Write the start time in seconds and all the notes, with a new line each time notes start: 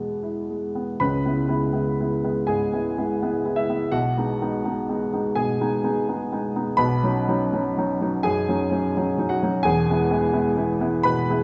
Already playing: B2 G#3 B3 E4 G#4
0.23 E4
0.50 G#3
0.75 B3
1.00 C#2 C#3 B4 B5
1.25 G#3 B3 E4
1.48 G#3 B3 E4
1.73 G#3 B3 E4
2.00 G#3 B3 E4
2.24 G#3 B3 E4
2.47 G#2 G#4 G#5
2.73 G#3 B3 E4
2.98 G#3 B3 E4
3.22 G#3 B3 E4
3.45 G#3 B3 E4
3.56 E4 E5
3.69 G#3 B3 E4
3.92 B1 B2 F#4 F#5
4.17 G#3 B3 D#4
4.41 G#3 B3 D#4
4.65 G#3 B3 D#4
4.89 G#3 B3 D#4
5.13 G#3 B3 D#4
5.35 B2 G#4 G#5
5.60 G#3 B3 D#4
5.84 G#3 B3 D#4
6.08 G#3 B3 D#4
6.32 G#3 B3 D#4
6.56 G#3 B3 D#4
6.77 B1 B2 B4 B5
7.03 F#3 C#4 D#4
7.28 F#3 C#4 D#4
7.53 F#3 C#4 D#4
7.78 F#3 C#4 D#4
8.01 F#3 C#4 D#4
8.23 F#2 G#4 G#5
8.48 F#3 C#4 D#4
8.71 F#3 C#4 D#4
8.96 F#3 C#4 D#4
9.18 F#3 C#4 D#4
9.29 F#4 F#5
9.43 F#3 C#4 D#4
9.63 E1 E2 G#4 G#5
9.90 G#3 B3 E4
10.11 G#3 B3 E4
10.33 G#3 B3 E4
10.56 G#3 B3 E4
10.81 G#3 B3 E4
11.03 B2 B4 B5
11.30 G#3 B3 E4